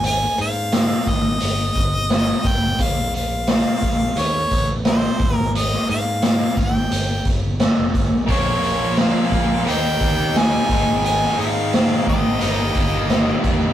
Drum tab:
HH |x-x-x-x-x-x-x-x-|x-x-x-x-x-x-x-x-|x-x-x-x-x-x-x-x-|x-x-x-x-x-x-x-x-|
SD |----o-------o---|----o-------o---|-o--o-------o---|----o-------o---|
BD |------o---o---o-|o-----o---o---o-|------o---o---o-|o-----o---o---o-|

HH |x-x-x-x-x-x-x-x-|
SD |-o--o-------o---|
BD |------o---o---o-|